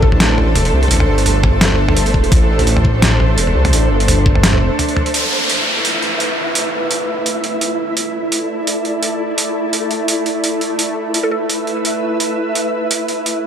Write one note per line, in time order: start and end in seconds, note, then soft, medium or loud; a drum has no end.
0.00 0.54 A1 loud
0.00 5.10 A3 medium
0.00 5.10 D4 medium
0.00 5.12 A4 medium
0.00 5.15 A4 medium
0.00 0.09 A4 medium
0.00 5.16 C5 medium
0.00 kick medium
0.12 mid tom medium
0.20 snare loud
0.20 closed hi-hat medium
0.38 mid tom medium
0.55 0.72 E1 medium
0.55 closed hi-hat medium
0.55 mid tom medium
0.65 closed hi-hat soft
0.73 0.89 C2 loud
0.83 closed hi-hat soft
0.83 mid tom soft
0.85 mid tom soft
0.88 1.07 A1 loud
0.88 closed hi-hat medium
0.88 mid tom soft
0.91 mid tom soft
0.94 mid tom soft
0.97 mid tom soft
1.00 mid tom medium
1.08 2.13 G1 medium
1.18 closed hi-hat soft
1.26 closed hi-hat medium
1.26 mid tom medium
1.44 kick medium
1.44 mid tom medium
1.61 snare loud
1.61 closed hi-hat medium
1.71 mid tom medium
1.89 mid tom medium
1.97 closed hi-hat medium
2.06 closed hi-hat soft
2.14 2.31 E1 medium
2.14 kick medium
2.14 mid tom medium
2.24 closed hi-hat soft
2.32 3.37 A1 loud
2.32 kick loud
2.32 closed hi-hat medium
2.32 mid tom medium
2.59 closed hi-hat soft
2.59 mid tom medium
2.67 closed hi-hat medium
2.77 mid tom medium
2.85 kick medium
3.02 snare loud
3.02 closed hi-hat medium
3.02 mid tom medium
3.20 mid tom medium
3.38 3.54 E1 medium
3.38 closed hi-hat medium
3.47 mid tom medium
3.55 3.72 C2 loud
3.65 closed hi-hat soft
3.65 mid tom medium
3.73 3.89 A1 loud
3.73 closed hi-hat medium
3.91 4.63 G1 medium
4.00 closed hi-hat soft
4.08 closed hi-hat medium
4.08 mid tom medium
4.26 kick medium
4.35 mid tom medium
4.43 snare loud
4.43 closed hi-hat medium
4.53 mid tom medium
4.61 4.70 E1 loud
4.79 closed hi-hat medium
4.79 mid tom medium
4.89 closed hi-hat soft
4.97 mid tom medium
5.06 closed hi-hat soft
5.14 13.47 A3 medium
5.14 13.47 E4 medium
5.14 7.96 B4 medium
5.14 7.98 E5 medium
5.14 closed hi-hat medium
5.14 downlifter medium
5.50 closed hi-hat medium
5.85 closed hi-hat medium
6.02 closed hi-hat soft
6.20 closed hi-hat medium
6.55 closed hi-hat medium
6.91 closed hi-hat medium
7.26 closed hi-hat medium
7.44 closed hi-hat soft
7.61 closed hi-hat medium
7.97 10.81 A4 medium
7.97 10.78 D5 medium
7.97 closed hi-hat medium
8.32 closed hi-hat medium
8.67 closed hi-hat medium
8.85 closed hi-hat soft
9.03 closed hi-hat medium
9.38 closed hi-hat medium
9.73 closed hi-hat medium
9.91 closed hi-hat soft
10.08 closed hi-hat medium
10.26 closed hi-hat soft
10.44 closed hi-hat medium
10.61 closed hi-hat soft
10.78 13.47 B4 medium
10.78 13.47 E5 medium
10.78 closed hi-hat medium
11.14 closed hi-hat medium
11.23 11.29 A4 medium
11.31 11.38 A4 medium
11.50 closed hi-hat medium
11.67 closed hi-hat soft
11.85 closed hi-hat medium
12.20 closed hi-hat medium
12.55 closed hi-hat medium
12.91 closed hi-hat medium
13.08 closed hi-hat soft
13.26 closed hi-hat medium